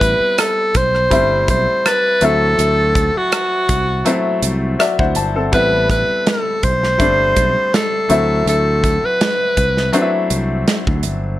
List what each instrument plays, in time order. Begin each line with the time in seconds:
Already playing: fingered electric bass A1, grand piano G3 B3 C4 E4, alto saxophone B4
0.01 kick, closed hi-hat
0.20 muted fingered electric bass stroke
0.38 alto saxophone A4, cross-stick, closed hi-hat
0.75 fingered electric bass B1, alto saxophone C5, kick, closed hi-hat
0.95 cross-stick
1.10 fingered electric bass G1, grand piano G3 A3 C4 E4, kick, closed hi-hat
1.48 fingered electric bass B1, alto saxophone C5, kick, closed hi-hat
1.86 alto saxophone B4, glockenspiel A6, cross-stick, closed hi-hat
2.21 fingered electric bass D2, grand piano F#3 A3 C4 E4, alto saxophone A4, closed hi-hat
2.59 fingered electric bass D2, closed hi-hat
2.95 kick, closed hi-hat
3.16 alto saxophone F#4, muted fingered electric bass stroke
3.32 cross-stick, closed hi-hat
3.69 fingered electric bass C2, kick, closed hi-hat
4.05 grand piano F#3 A3 C4 E4, closed hi-hat
4.42 fingered electric bass C2, closed hi-hat
4.79 grand piano F#4 D5 E5, cross-stick, closed hi-hat
4.99 fingered electric bass D2, grand piano E4 C5 F#5, kick
5.15 fingered electric bass G1, grand piano A5, closed hi-hat
5.36 grand piano C4 A4
5.52 fingered electric bass A1, grand piano G3 B3 C4 E4, alto saxophone B4, kick, closed hi-hat
5.90 alto saxophone B4, kick, closed hi-hat
6.10 muted fingered electric bass stroke
6.27 alto saxophone A4, snare, closed hi-hat
6.63 fingered electric bass B1, alto saxophone C5, kick, closed hi-hat
6.83 snare
6.98 fingered electric bass G1, grand piano G3 A3 C4 D4, glockenspiel C7, kick, closed hi-hat
7.36 fingered electric bass B1, kick, closed hi-hat
7.74 alto saxophone A4, snare, closed hi-hat
8.09 fingered electric bass D2, grand piano F#3 A3 C4 E4, closed hi-hat
8.46 fingered electric bass D2, alto saxophone A4, closed hi-hat
8.84 kick, closed hi-hat
9.04 alto saxophone B4, muted fingered electric bass stroke
9.21 snare, closed hi-hat
9.57 fingered electric bass C2, kick, closed hi-hat
9.77 snare
9.92 grand piano F#3 A3 C4 D4, closed hi-hat
10.01 grand piano E4
10.30 fingered electric bass C2, closed hi-hat
10.68 snare, closed hi-hat
10.87 fingered electric bass D2, kick
11.03 fingered electric bass G1, closed hi-hat